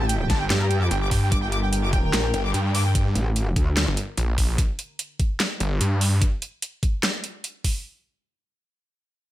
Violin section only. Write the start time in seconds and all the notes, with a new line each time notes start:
0.09 G5
0.20 G5
0.29 A5
0.41 G5
0.50 G5
0.61 A#5
0.70 G5
0.82 D6
0.91 G5
1.02 D6
1.11 G5
1.22 G5
1.31 D6
1.43 G5
1.52 D6
1.63 G5
1.72 G5
1.84 D6
1.93 G5
2.04 G5
2.24 G5
2.34 G5
2.45 D6
2.54 G5
2.65 G5
2.74 D6
2.85 G5